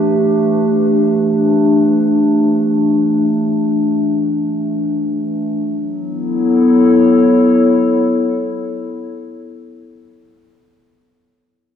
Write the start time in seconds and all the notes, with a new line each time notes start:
Already playing: E3 A3 D4 G4 B4
5.66 F#3
5.78 B3
5.91 E4
6.02 A4
6.15 C#5